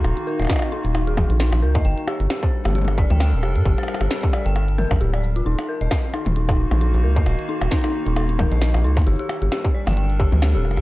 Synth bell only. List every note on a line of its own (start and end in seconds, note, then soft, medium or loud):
0.04 0.10 D#4 loud
0.17 0.24 D#4 medium
0.27 0.36 A#4 medium
0.40 0.47 D#5 medium
0.50 0.59 D#5 medium
0.72 0.81 D#4 loud
0.95 1.04 D#4 medium
1.07 1.12 G#4 medium
1.30 1.34 D#4 medium
1.40 1.45 D#4 loud
1.52 1.60 D#4 medium
1.62 1.72 A#4 medium
1.75 1.82 D#5 medium
1.85 1.94 G5 medium
2.08 2.17 G4 loud
2.30 2.39 G4 medium
2.43 2.47 C5 medium
2.65 2.70 G4 medium
2.75 2.81 G4 loud
2.88 2.95 G4 medium
2.98 3.07 D5 medium
3.10 3.18 G5 medium
3.20 3.30 G5 medium
3.43 3.52 G4 loud
3.66 3.75 G4 medium
3.78 3.82 C5 medium
4.01 4.05 G4 medium
4.11 4.16 G4 loud
4.23 4.30 G4 medium
4.33 4.42 D5 medium
4.46 4.53 G5 medium
4.56 4.65 G5 medium
4.78 4.90 A#4 loud
5.01 5.06 G4 medium
5.13 5.23 D5 medium
5.36 5.40 F4 medium
5.46 5.51 D#4 loud
5.59 5.66 D#4 medium
5.69 5.78 A#4 medium
5.81 5.88 D#5 medium
5.91 6.00 D#5 medium
6.14 6.23 D#4 loud
6.36 6.45 D#4 medium
6.49 6.56 D#4 loud
6.71 6.76 D#4 medium
6.81 6.87 D#4 loud
6.94 7.01 D#4 medium
7.04 7.13 A#4 medium
7.16 7.24 D#5 medium
7.26 7.35 D#5 medium
7.49 7.58 D#4 loud
7.71 7.81 D#4 medium
7.84 7.91 D#4 loud
8.07 8.11 D#4 medium
8.16 8.22 D#4 loud
8.29 8.36 D#4 medium
8.39 8.48 A#4 medium
8.52 8.59 D#5 medium
8.62 8.71 D#5 medium
8.84 8.93 D#4 loud
9.07 9.16 G4 medium
9.19 9.27 G4 loud
9.42 9.46 G4 medium
9.52 9.57 G4 loud
9.65 9.72 G4 medium
9.74 9.84 D5 medium
9.87 9.94 G5 medium
9.97 10.06 G5 medium
10.20 10.29 G4 loud
10.42 10.51 G4 medium
10.55 10.62 G4 loud
10.77 10.81 G4 medium